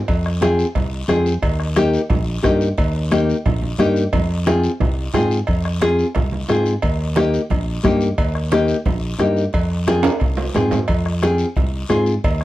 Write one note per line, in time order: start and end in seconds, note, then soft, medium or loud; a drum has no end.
0.08 0.63 F2 loud
0.08 bombo low medium
0.08 cowbell loud
0.08 high conga soft
0.08 long guiro medium
0.26 bombo rim medium
0.41 0.65 C4 medium
0.41 0.65 F4 medium
0.41 0.65 G#4 medium
0.41 bombo rim medium
0.41 high conga medium
0.41 short guiro medium
0.59 short guiro medium
0.75 1.02 C2 medium
0.75 bombo low medium
0.75 cowbell medium
0.75 high conga soft
0.75 low conga medium
0.75 long guiro medium
1.08 1.36 F2 medium
1.08 1.32 C4 medium
1.08 1.33 F4 medium
1.08 1.33 G#4 medium
1.08 bombo rim medium
1.08 high conga medium
1.08 low timbale medium
1.08 short guiro medium
1.26 short guiro medium
1.42 1.97 D#2 loud
1.42 bombo low medium
1.42 cowbell loud
1.42 high conga soft
1.42 long guiro medium
1.60 bombo rim medium
1.76 2.00 A#3 medium
1.76 2.00 D#4 medium
1.76 2.00 G4 loud
1.76 bombo rim medium
1.76 high conga medium
1.76 short guiro medium
1.94 short guiro medium
2.10 2.37 A#1 medium
2.10 bombo low medium
2.10 cowbell medium
2.10 high conga soft
2.10 low conga medium
2.10 long guiro medium
2.43 2.71 G2 medium
2.43 2.67 A#3 medium
2.43 2.67 D#4 medium
2.43 2.68 G4 medium
2.43 bombo low medium
2.43 bombo rim medium
2.43 high conga medium
2.43 low timbale medium
2.43 short guiro medium
2.61 short guiro medium
2.77 3.32 D#2 loud
2.77 bombo low medium
2.77 cowbell loud
2.77 high conga soft
2.77 long guiro medium
3.11 3.35 A#3 medium
3.11 3.35 D#4 medium
3.11 3.36 G4 medium
3.11 bombo rim medium
3.11 high conga medium
3.11 short guiro medium
3.29 short guiro medium
3.45 3.73 A#1 medium
3.45 bombo low medium
3.45 cowbell medium
3.45 high conga soft
3.45 low conga medium
3.45 long guiro medium
3.62 high conga medium
3.79 4.06 G2 loud
3.79 4.03 A#3 medium
3.79 4.03 D#4 medium
3.79 4.03 G4 medium
3.79 bombo rim medium
3.79 high conga medium
3.79 short guiro medium
3.96 short guiro medium
4.13 4.67 F2 loud
4.13 bombo low medium
4.13 cowbell loud
4.13 high conga soft
4.13 low conga medium
4.13 long guiro medium
4.46 4.70 C4 medium
4.46 4.70 F4 medium
4.46 4.71 G#4 medium
4.46 bombo rim medium
4.46 high conga medium
4.46 short guiro medium
4.63 short guiro medium
4.80 5.08 C2 loud
4.80 bombo low medium
4.80 cowbell medium
4.80 high conga soft
4.80 low conga medium
4.80 long guiro medium
5.13 5.41 G#2 medium
5.13 5.38 C4 medium
5.13 5.38 F4 medium
5.13 5.38 G#4 medium
5.13 bombo rim medium
5.13 high conga medium
5.13 low conga medium
5.13 low timbale medium
5.13 short guiro medium
5.31 short guiro medium
5.47 6.02 F2 medium
5.47 bombo low medium
5.47 cowbell loud
5.47 high conga soft
5.47 long guiro medium
5.65 bombo rim medium
5.81 6.05 C4 medium
5.81 6.05 F4 medium
5.81 6.05 G#4 medium
5.81 bombo rim medium
5.81 high conga medium
5.81 short guiro medium
5.99 short guiro medium
6.14 6.43 C2 medium
6.14 bombo low medium
6.14 cowbell medium
6.14 high conga soft
6.14 low conga medium
6.14 long guiro medium
6.32 high conga medium
6.48 6.76 G#2 medium
6.48 6.72 C4 medium
6.48 6.73 F4 medium
6.48 6.73 G#4 medium
6.48 bombo rim medium
6.48 high conga medium
6.48 low timbale medium
6.48 short guiro medium
6.66 short guiro medium
6.82 7.37 D#2 loud
6.82 bombo low medium
6.82 cowbell loud
6.82 high conga soft
6.82 long guiro medium
7.16 7.40 A#3 medium
7.16 7.40 D#4 medium
7.16 7.41 G4 medium
7.16 bombo rim medium
7.16 high conga medium
7.16 short guiro medium
7.34 short guiro medium
7.50 7.78 A#1 medium
7.50 bombo low medium
7.50 cowbell medium
7.50 high conga soft
7.50 low conga medium
7.50 long guiro medium
7.83 8.11 G2 medium
7.83 8.08 A#3 medium
7.83 8.08 D#4 medium
7.83 8.08 G4 medium
7.83 bombo low medium
7.83 bombo rim medium
7.83 high conga medium
7.83 low conga medium
7.83 low timbale medium
7.83 short guiro medium
8.01 short guiro medium
8.18 8.72 D#2 medium
8.18 bombo low medium
8.18 cowbell loud
8.18 high conga soft
8.18 long guiro medium
8.35 bombo rim medium
8.51 8.76 A#3 medium
8.51 8.76 D#4 medium
8.51 8.76 G4 medium
8.51 bombo rim medium
8.51 high conga loud
8.51 short guiro medium
8.68 short guiro medium
8.86 9.13 A#1 medium
8.86 bombo low medium
8.86 cowbell medium
8.86 high conga soft
8.86 low conga medium
8.86 long guiro medium
9.19 9.46 G2 medium
9.19 9.43 A#3 medium
9.19 9.43 D#4 medium
9.19 9.44 G4 medium
9.19 bombo rim medium
9.19 high conga medium
9.19 low timbale medium
9.19 short guiro medium
9.37 short guiro medium
9.53 10.08 F2 loud
9.53 bombo low medium
9.53 cowbell loud
9.53 high conga soft
9.53 long guiro medium
9.87 10.11 C4 medium
9.87 10.11 F4 medium
9.87 10.11 G#4 loud
9.87 bombo rim medium
9.87 high conga medium
9.87 high timbale medium
9.87 short guiro medium
10.03 high conga medium
10.03 high timbale loud
10.03 short guiro medium
10.20 10.48 C2 medium
10.20 bombo low medium
10.20 cowbell medium
10.20 high conga medium
10.20 long guiro medium
10.37 low timbale loud
10.54 10.82 G#2 medium
10.54 10.78 C4 medium
10.54 10.78 F4 medium
10.54 10.79 G#4 medium
10.54 bombo rim medium
10.54 low conga medium
10.54 low timbale medium
10.54 short guiro medium
10.71 low conga medium
10.71 low timbale medium
10.71 short guiro medium
10.88 11.43 F2 loud
10.88 bombo low medium
10.88 cowbell loud
10.88 high conga soft
10.88 long guiro medium
11.06 bombo rim medium
11.22 11.46 C4 medium
11.22 11.46 F4 medium
11.22 11.46 G#4 medium
11.22 bombo rim medium
11.22 high conga medium
11.22 short guiro medium
11.38 short guiro medium
11.56 11.83 C2 medium
11.56 bombo low medium
11.56 cowbell medium
11.56 high conga soft
11.56 low conga medium
11.56 long guiro medium
11.89 12.17 G#2 medium
11.89 12.13 C4 medium
11.89 12.13 F4 medium
11.89 12.13 G#4 medium
11.89 bombo rim medium
11.89 high conga medium
11.89 low timbale medium
11.89 short guiro medium
12.06 short guiro medium
12.24 12.44 D#2 medium
12.24 bombo low medium
12.24 cowbell loud
12.24 high conga soft
12.24 long guiro medium
12.41 bombo rim medium